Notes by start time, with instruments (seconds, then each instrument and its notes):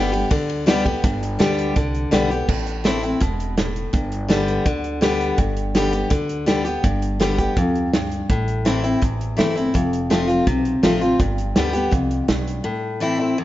Already playing: upright bass G1, steel-string acoustic guitar G2 D3 G3 B3 G4
0.12 steel-string acoustic guitar B3 G4, ride
0.31 upright bass D2, steel-string acoustic guitar D3, kick, ride
0.49 ride
0.66 steel-string acoustic guitar D3 G3 B3 G4, snare, ride
0.85 steel-string acoustic guitar B3 G4, kick, ride
1.04 upright bass G1, steel-string acoustic guitar G2, kick, closed hi-hat
1.23 closed hi-hat
1.39 upright bass D2, steel-string acoustic guitar D3 G3 B3 G4, snare, closed hi-hat
1.59 closed hi-hat
1.76 upright bass C2, steel-string acoustic guitar D3, kick, closed hi-hat
1.95 closed hi-hat
2.11 upright bass B1, steel-string acoustic guitar D3 G3 B3 G4, snare, closed hi-hat
2.30 steel-string acoustic guitar B3 G4, closed hi-hat
2.49 upright bass A1, steel-string acoustic guitar A2, kick, crash
2.67 closed hi-hat
2.84 steel-string acoustic guitar E3 A3 C4 E4, snare, closed hi-hat
3.03 steel-string acoustic guitar C4 E4, closed hi-hat
3.20 upright bass E1, steel-string acoustic guitar B2, kick, closed hi-hat
3.40 closed hi-hat
3.57 steel-string acoustic guitar A2, snare, closed hi-hat
3.76 closed hi-hat
3.93 upright bass G1, steel-string acoustic guitar G2, kick, closed hi-hat
4.12 closed hi-hat
4.29 steel-string acoustic guitar D3 G3 B3 G4, snare, closed hi-hat
4.48 closed hi-hat
4.66 upright bass D2, steel-string acoustic guitar D3, kick, closed hi-hat
4.84 closed hi-hat
5.01 steel-string acoustic guitar D3 G3 B3 G4, snare, closed hi-hat
5.21 closed hi-hat
5.38 upright bass G1, steel-string acoustic guitar G2, kick, closed hi-hat
5.57 closed hi-hat
5.75 steel-string acoustic guitar D3 G3 B3 G4, snare, closed hi-hat
5.93 steel-string acoustic guitar B3 G4, closed hi-hat
6.10 upright bass D2, steel-string acoustic guitar D3, kick, closed hi-hat
6.29 closed hi-hat
6.46 steel-string acoustic guitar D3 G3 B3 G4, snare, closed hi-hat
6.65 steel-string acoustic guitar B3 G4, closed hi-hat
6.84 upright bass G1, steel-string acoustic guitar G2, kick, closed hi-hat
7.02 closed hi-hat
7.20 steel-string acoustic guitar D3 G3 B3 G4, snare, closed hi-hat
7.39 steel-string acoustic guitar B3 G4, kick, closed hi-hat
7.57 upright bass D2, steel-string acoustic guitar F2, kick, closed hi-hat
7.76 closed hi-hat
7.93 steel-string acoustic guitar G2, snare, closed hi-hat
8.12 closed hi-hat
8.30 upright bass A1, steel-string acoustic guitar A2, kick, closed hi-hat
8.48 closed hi-hat
8.65 steel-string acoustic guitar E3 A3 C4 E4, snare, closed hi-hat
8.84 steel-string acoustic guitar C4 E4, closed hi-hat
9.02 upright bass A1, steel-string acoustic guitar E2, kick, closed hi-hat
9.21 closed hi-hat
9.37 upright bass G1, steel-string acoustic guitar E3 A3 C4 E4, snare, closed hi-hat
9.56 steel-string acoustic guitar C4 E4, closed hi-hat
9.74 upright bass F1, steel-string acoustic guitar F2, kick, closed hi-hat
9.93 closed hi-hat
10.10 steel-string acoustic guitar F3 A3 C4 F4, snare, closed hi-hat
10.28 steel-string acoustic guitar C4 F4, closed hi-hat
10.47 upright bass B1, steel-string acoustic guitar C3, kick, closed hi-hat
10.65 closed hi-hat
10.83 upright bass A1, steel-string acoustic guitar F3 A3 C4 F4, snare, closed hi-hat
11.01 steel-string acoustic guitar C4 F4, closed hi-hat
11.20 upright bass G1, steel-string acoustic guitar G2, kick, closed hi-hat
11.38 closed hi-hat
11.55 upright bass D2, steel-string acoustic guitar D3 G3 B3 G4, snare, closed hi-hat
11.73 steel-string acoustic guitar B3 G4, closed hi-hat
11.91 upright bass C2, steel-string acoustic guitar F2, kick, closed hi-hat
12.11 closed hi-hat
12.28 upright bass B1, steel-string acoustic guitar G2, snare, closed hi-hat
12.47 closed hi-hat
12.64 steel-string acoustic guitar A2
13.00 steel-string acoustic guitar E3 A3 C4 E4
13.20 steel-string acoustic guitar C4 E4
13.38 steel-string acoustic guitar E2